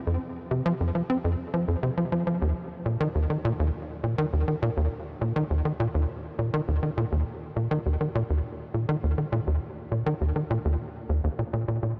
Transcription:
0.07 0.18 F2 medium
0.51 0.62 C3 medium
0.66 0.73 F3 loud
0.80 0.92 F2 medium
0.95 1.02 F3 medium
1.10 1.17 C4 medium
1.24 1.36 F2 medium
1.54 1.65 F3 medium
1.68 1.76 F2 medium
1.83 1.90 C3 medium
1.97 2.05 F3 medium
2.12 2.24 F3 medium
2.27 2.38 F3 medium
2.42 2.53 D#2 medium
2.86 2.97 A#2 medium
3.00 3.08 D#3 loud
3.15 3.27 D#2 medium
3.30 3.38 D#3 medium
3.45 3.52 A#2 loud
3.59 3.71 D#2 medium
4.04 4.15 A#2 medium
4.18 4.26 D#3 loud
4.33 4.44 D#2 medium
4.48 4.55 D#3 medium
4.62 4.70 A#2 loud
4.77 4.88 D#2 medium
5.21 5.33 A#2 medium
5.36 5.44 D#3 loud
5.50 5.62 D#2 medium
5.65 5.73 D#3 medium
5.80 5.87 A#2 loud
5.94 6.06 D#2 medium
6.39 6.50 A#2 medium
6.54 6.61 D#3 loud
6.68 6.79 D#2 medium
6.83 6.90 D#3 medium
6.97 7.05 A#2 medium
7.12 7.24 D#2 medium
7.56 7.68 A#2 medium
7.71 7.79 D#3 loud
7.86 7.97 D#2 medium
8.01 8.08 D#3 medium
8.15 8.23 A#2 loud
8.30 8.41 D#2 medium
8.74 8.85 A#2 medium
8.89 8.96 D#3 loud
9.03 9.15 D#2 medium
9.18 9.26 D#3 medium
9.32 9.40 A#2 loud
9.47 9.59 D#2 medium
9.92 10.03 A#2 medium
10.06 10.14 D#3 loud
10.21 10.32 D#2 medium
10.36 10.43 D#3 medium
10.50 10.58 A#2 loud
10.65 10.77 D#2 medium
11.09 11.21 D#2 medium
11.24 11.29 D#2 medium
11.39 11.43 A#2 medium
11.53 11.65 A#2 medium
11.68 11.80 A#2 medium
11.83 11.94 A#2 medium

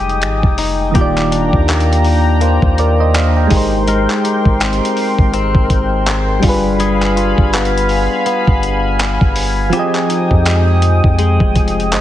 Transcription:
0.00 0.24 F1 medium
0.00 0.95 F3 medium
0.00 0.96 G3 medium
0.00 0.97 G#3 medium
0.00 1.03 G#3 medium
0.00 0.58 D#4 medium
0.00 0.96 D#4 medium
0.00 0.95 G4 medium
0.00 0.18 D#5 medium
0.00 0.92 G5 medium
0.00 0.90 G#5 medium
0.00 0.92 D#6 medium
0.09 closed hi-hat soft
0.22 0.42 G#1 medium
0.22 finger snap loud
0.22 closed hi-hat medium
0.43 0.93 F1 loud
0.43 kick medium
0.58 1.31 D#4 medium
0.58 open hi-hat medium
0.91 1.51 D#1 loud
0.91 3.45 D#3 medium
0.91 3.51 D#3 medium
0.91 3.46 A#3 medium
0.91 3.48 D4 medium
0.91 3.48 G5 medium
0.91 3.48 A#5 medium
0.91 kick loud
0.91 closed hi-hat medium
0.95 3.48 F4 medium
0.95 3.88 G4 medium
0.95 3.49 G4 medium
1.01 2.41 D5 medium
1.18 clap medium
1.32 3.59 D4 medium
1.32 closed hi-hat medium
1.53 2.59 D#2 loud
1.53 kick medium
1.68 2.41 A#3 medium
1.68 clap loud
1.68 closed hi-hat soft
1.80 closed hi-hat medium
1.93 closed hi-hat medium
2.04 open hi-hat medium
2.41 3.91 A#3 medium
2.41 2.77 C5 medium
2.41 closed hi-hat medium
2.62 3.47 D#2 medium
2.62 kick loud
2.78 2.99 A#4 medium
2.78 2.99 D5 medium
2.78 closed hi-hat medium
3.00 3.14 C5 medium
3.00 3.14 D#5 medium
3.14 3.35 D5 medium
3.14 3.35 F5 medium
3.14 clap loud
3.14 closed hi-hat medium
3.37 3.71 D#5 medium
3.37 3.71 G5 medium
3.47 6.38 G#3 medium
3.47 3.87 G#3 medium
3.47 6.39 D#4 medium
3.47 6.40 A#4 medium
3.47 6.40 G5 medium
3.47 6.41 C6 medium
3.47 kick loud
3.47 open hi-hat medium
3.51 4.07 G#1 loud
3.51 6.40 G4 medium
3.51 6.41 A#4 medium
3.57 6.42 C5 medium
3.88 6.43 G#3 medium
3.88 6.52 A#4 medium
3.88 closed hi-hat medium
4.10 clap medium
4.24 6.83 G4 medium
4.24 closed hi-hat medium
4.45 4.81 G#1 loud
4.45 kick medium
4.60 5.32 C4 medium
4.60 clap loud
4.60 closed hi-hat soft
4.73 closed hi-hat medium
4.85 closed hi-hat medium
4.97 open hi-hat medium
5.19 5.54 G#1 loud
5.19 kick medium
5.34 6.52 C4 medium
5.34 closed hi-hat medium
5.55 6.40 G#1 loud
5.55 kick loud
5.70 kick medium
5.70 closed hi-hat medium
6.06 clap loud
6.06 closed hi-hat medium
6.40 9.30 G3 medium
6.40 6.79 G3 medium
6.40 9.31 D4 medium
6.40 9.69 F5 medium
6.40 12.01 G#5 medium
6.40 9.69 B5 medium
6.40 kick loud
6.40 open hi-hat medium
6.44 7.34 G1 loud
6.44 9.32 F4 medium
6.44 9.34 G#4 medium
6.49 9.35 B4 medium
6.80 9.76 G3 medium
6.80 9.76 G#4 medium
6.80 closed hi-hat medium
7.02 clap medium
7.17 9.73 F4 medium
7.17 closed hi-hat medium
7.38 8.08 G1 loud
7.38 kick medium
7.53 8.25 B3 medium
7.53 clap loud
7.53 closed hi-hat soft
7.65 closed hi-hat medium
7.78 closed hi-hat medium
7.89 open hi-hat medium
8.26 9.81 B3 medium
8.26 closed hi-hat medium
8.47 9.18 G1 loud
8.47 kick loud
8.63 closed hi-hat medium
8.99 clap loud
8.99 closed hi-hat medium
9.21 9.71 G1 loud
9.21 kick loud
9.36 open hi-hat medium
9.70 12.01 F3 medium
9.70 12.01 C4 medium
9.70 12.01 G4 medium
9.70 12.01 G5 medium
9.70 12.01 D#6 medium
9.70 closed hi-hat medium
9.74 12.01 G4 medium
9.74 12.01 G#4 medium
9.79 11.91 D#5 medium
9.95 clap medium
10.09 12.01 D#4 medium
10.09 closed hi-hat medium
10.31 11.01 F2 loud
10.31 kick medium
10.46 11.18 G#3 medium
10.46 clap loud
10.46 closed hi-hat medium
10.82 closed hi-hat medium
11.04 11.39 F2 loud
11.04 kick medium
11.19 12.01 G#3 medium
11.19 closed hi-hat medium
11.40 11.55 F1 loud
11.40 kick medium
11.56 11.95 F1 loud
11.56 kick medium
11.56 closed hi-hat medium
11.68 closed hi-hat medium
11.80 closed hi-hat soft
11.92 12.01 G#1 medium
11.92 12.01 C5 medium
11.92 12.01 D#5 medium
11.92 clap loud
11.92 closed hi-hat medium

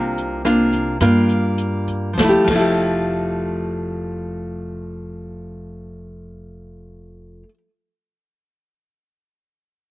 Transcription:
0.00 0.97 C2 medium
0.00 0.98 C3 medium
0.00 0.41 A#3 medium
0.00 0.41 D4 medium
0.00 0.41 F4 medium
0.18 closed hi-hat soft
0.45 0.96 A#3 medium
0.45 0.96 D4 medium
0.45 0.97 F4 medium
0.45 cross-stick soft
0.45 closed hi-hat soft
0.73 kick soft
0.73 closed hi-hat soft
1.01 2.14 G2 medium
1.01 2.13 G3 soft
1.01 2.13 A#3 medium
1.01 2.13 D4 soft
1.01 2.13 F4 medium
1.01 kick medium
1.01 cross-stick soft
1.01 closed hi-hat soft
1.29 closed hi-hat soft
1.58 closed hi-hat soft
1.88 kick soft
1.88 closed hi-hat soft
2.13 2.44 F3 soft
2.18 2.35 F1 medium
2.18 2.49 A3 medium
2.18 kick medium
2.18 snare medium
2.24 2.47 E4 medium
2.29 2.47 G4 medium
2.44 7.42 F1 medium
2.44 7.43 F3 soft
2.44 kick medium
2.44 crash medium
2.50 7.48 A3 medium
2.55 7.54 E4 medium
2.55 7.58 G4 medium

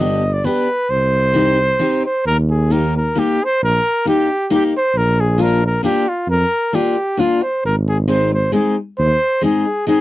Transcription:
0.00 0.43 G1 medium
0.00 0.21 B3 medium
0.00 0.22 D4 medium
0.00 0.22 G4 medium
0.00 0.35 D#5 medium
0.33 0.47 D5 medium
0.44 0.67 B3 medium
0.44 0.67 D4 medium
0.44 0.68 G4 medium
0.44 0.92 B4 medium
0.90 1.79 C2 medium
0.90 2.05 C5 loud
1.34 1.57 C4 medium
1.34 1.57 D#4 medium
1.34 1.58 G4 medium
1.79 2.02 C4 medium
1.79 2.03 D#4 medium
1.79 2.03 G4 medium
2.06 2.25 C5 medium
2.26 3.14 D#2 medium
2.26 2.37 A#4 loud
2.51 2.73 G#4 medium
2.70 2.93 A#3 medium
2.70 2.93 D#4 medium
2.70 2.94 G4 medium
2.70 2.96 A#4 loud
2.97 3.20 A#4 medium
3.15 3.38 A#3 medium
3.15 3.38 D#4 medium
3.15 3.39 G4 medium
3.15 3.46 G4 loud
3.44 3.63 C5 loud
3.62 3.78 A#1 medium
3.62 4.04 A#4 loud
4.05 4.27 A#3 medium
4.05 4.28 D#4 soft
4.05 4.28 G4 medium
4.05 4.49 G4 medium
4.50 4.72 A#3 medium
4.50 4.72 D#4 medium
4.50 4.73 G4 medium
4.50 4.64 G4 medium
4.77 4.99 C5 loud
4.95 5.82 A#1 medium
4.95 5.22 A#4 loud
5.20 5.43 G#4 medium
5.38 5.60 A#3 medium
5.38 5.60 D4 medium
5.38 5.61 F4 medium
5.38 5.64 A#4 loud
5.66 5.84 A#4 medium
5.83 6.05 A#3 medium
5.83 6.05 D4 medium
5.83 6.06 F4 medium
5.83 6.10 G4 loud
6.09 6.29 F4 medium
6.27 6.44 F2 medium
6.27 6.76 A#4 loud
6.73 6.95 A#3 medium
6.73 6.95 D4 medium
6.73 6.96 F4 medium
6.73 7.21 G4 medium
7.17 7.40 A#3 medium
7.17 7.40 D4 medium
7.17 7.44 F4 medium
7.17 7.41 F4 medium
7.42 7.64 C5 medium
7.64 8.52 G#1 medium
7.64 7.76 A#4 medium
7.89 7.98 G#4 medium
8.08 8.30 G#3 medium
8.08 8.31 C4 medium
8.08 8.31 D#4 medium
8.08 8.32 C5 medium
8.34 8.53 C5 medium
8.52 8.75 G#3 medium
8.52 8.75 C4 medium
8.52 8.76 D#4 medium
8.52 8.76 G#4 medium
8.98 9.14 D#2 medium
8.98 9.40 C5 loud
9.41 9.64 G#3 medium
9.41 9.64 C4 medium
9.41 9.65 D#4 medium
9.41 9.85 G#4 medium
9.87 10.01 G#3 medium
9.87 10.01 C4 medium
9.87 10.01 D#4 medium
9.87 10.01 G#4 medium

